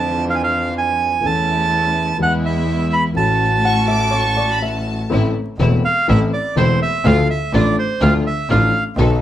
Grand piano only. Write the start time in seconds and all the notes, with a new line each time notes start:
Already playing: F2 D3 F3 A3 D4 F5
1.22 E2 E3 A3 C#4 A4
2.18 E2 E3 G#3 B3 G#4
3.14 A1 A2 E3 A3 C#4 F#4
5.10 A1 A2 E3 A3 C4 A4
5.59 E1 E2 E3 A3 C4 A4
6.08 A1 A2 E3 A3 C4 A4
6.56 E1 E2 E3 A3 C4 A4
7.05 D2 D3 F3 A3 D4 A4
7.54 A1 A2 F3 A3 D4 A4
8.03 D2 D3 F3 A3 D4 A4
8.50 A1 A2 F3 A3 D4 A4
8.98 B1 B2 F#3 B3 D#4 A4